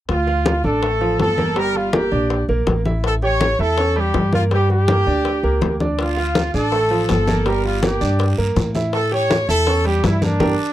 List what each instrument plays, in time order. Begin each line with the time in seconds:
0.09 upright bass D2, horn section F4, high bongo, high conga
0.27 grand piano F4 F5, high bongo, high conga
0.46 high bongo, high conga
0.64 upright bass A1, grand piano D4 D5, horn section A4, high conga
0.82 grand piano A3 A4, high bongo, high conga
1.01 grand piano F3 F4, high bongo, high conga
1.20 upright bass G1, horn section A4, high bongo, low bongo, high conga
1.38 grand piano A#3 A#4, high bongo, high conga
1.56 grand piano G3 G4, horn section A#4, high bongo, high conga
1.75 horn section F4, high bongo, high conga
1.93 grand piano A#3 A#4, horn section G4, high bongo, high conga
2.11 upright bass A#1, grand piano D4 D5, high bongo, high conga
2.30 high bongo, high conga
2.49 upright bass A#1, grand piano A#3 A#4, high conga
2.67 upright bass A1, high bongo, low bongo, high conga
2.85 grand piano E4 E5, high bongo, high conga
3.04 horn section A4, high bongo, high conga
3.22 grand piano G4 G5, horn section C#5, high bongo, high conga
3.41 high bongo, high conga
3.59 upright bass E2, grand piano E4 E5, horn section A4, high conga
3.77 grand piano C#4 C#5, high bongo, high conga
3.96 grand piano G3 G4, horn section G4, high bongo, high conga
4.14 upright bass G2, high bongo, low bongo, high conga
4.33 grand piano A#3 A#4, horn section F4, high bongo, high conga
4.51 grand piano G3 G4, horn section G4, high bongo, high conga
4.70 horn section G4, high bongo, high conga
4.88 grand piano A#3 A#4, high bongo, high conga
5.07 upright bass D2, grand piano D4 D5, high bongo, high conga
5.25 high bongo, high conga
5.43 upright bass C#2, grand piano A#3 A#4, high conga
5.62 upright bass D2, high bongo, low bongo, high conga
5.80 grand piano D4 D5, high bongo, high conga
5.99 horn section F4, high bongo, high conga, long guiro
6.17 grand piano F4 F5, high bongo, high conga
6.35 high bongo, high conga, short guiro
6.54 upright bass A1, grand piano D4 D5, horn section A4, high conga, short guiro
6.72 grand piano A3 A4, high bongo, high conga, long guiro
6.91 grand piano F3 F4, high bongo, high conga
7.09 upright bass G1, horn section A4, high bongo, low bongo, high conga, short guiro
7.27 grand piano A#3 A#4, high bongo, high conga, short guiro
7.46 grand piano G3 G4, horn section A#4, high bongo, high conga, long guiro
7.64 horn section F4, high bongo, high conga
7.83 grand piano A#3 A#4, horn section G4, high bongo, high conga, short guiro
8.01 upright bass G2, grand piano D4 D5, high bongo, high conga, short guiro
8.19 high bongo, high conga, long guiro
8.38 upright bass G2, grand piano A#3 A#4, high conga
8.56 upright bass A2, high bongo, low bongo, high conga, short guiro
8.75 grand piano E4 E5, high bongo, high conga, short guiro
8.93 horn section A4, high bongo, high conga, long guiro
9.12 grand piano G4 G5, horn section C#5, high bongo, high conga
9.30 high bongo, high conga, short guiro
9.49 upright bass E2, grand piano E4 E5, horn section A4, high conga, short guiro
9.66 grand piano C#4 C#5, high bongo, high conga, long guiro
9.85 grand piano G3 G4, horn section G4, high bongo, high conga
10.04 upright bass G2, horn section E4, high bongo, low bongo, high conga, short guiro
10.22 grand piano A#3 A#4, horn section D4, high bongo, high conga, short guiro
10.40 upright bass G1, grand piano D4 G4 A#4, high bongo, high conga, long guiro